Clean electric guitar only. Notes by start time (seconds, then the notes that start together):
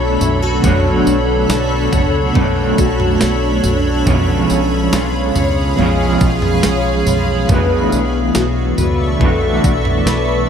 Already playing: B2 F#3 A3 D4 F#4 C#5
0.61 B2 F#3 A3
0.65 D4 F#4 C#5
2.32 B2 F#3 A3
2.37 D4 F#4 C#5
4.05 B2 F3 G#3 C#4 F4 C#5
4.92 G#3 C#4 F4 C#5
5.75 B2 F3 G#3
5.80 C#4 F4 C#5
7.47 B2 E3 A3
7.51 D4 F#4 B4
9.18 B2 E3 A3
9.22 D4 F#4 B4